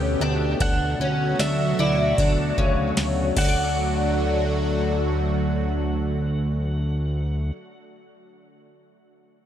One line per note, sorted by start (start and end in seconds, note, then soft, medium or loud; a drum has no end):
0.00 0.16 D2 loud
0.00 3.32 B2 medium
0.00 3.33 A3 medium
0.00 0.56 B3 medium
0.00 0.21 C#4 medium
0.00 0.57 G4 medium
0.00 0.61 G5 loud
0.20 0.55 D2 loud
0.20 0.59 D4 medium
0.60 0.95 D2 loud
0.60 3.34 F#3 medium
0.60 1.00 D4 medium
0.60 3.34 F#4 medium
0.60 1.40 F#5 loud
0.60 kick loud
0.60 ride medium
1.00 1.35 D2 loud
1.00 1.39 C#4 medium
1.39 1.74 D2 loud
1.39 1.79 D4 medium
1.39 1.80 E5 medium
1.39 snare loud
1.39 ride medium
1.39 tambourine medium
1.79 2.14 D2 loud
1.79 2.18 E4 medium
1.79 3.33 D5 medium
2.18 2.53 D2 loud
2.18 2.58 D4 medium
2.18 kick medium
2.18 ride medium
2.58 2.93 D2 loud
2.58 3.37 C#3 medium
2.58 kick medium
2.97 3.32 D2 loud
2.97 snare loud
2.97 ride medium
2.97 tambourine medium
3.36 7.51 D2 loud
3.36 7.52 D3 medium
3.36 7.52 F#3 medium
3.36 7.52 A3 medium
3.36 7.51 D4 medium
3.36 7.52 F#4 medium
3.36 7.53 F#5 medium
3.36 kick loud
3.36 crash medium
3.41 7.56 F#4 medium
3.41 3.48 A4 medium
3.49 7.64 D5 medium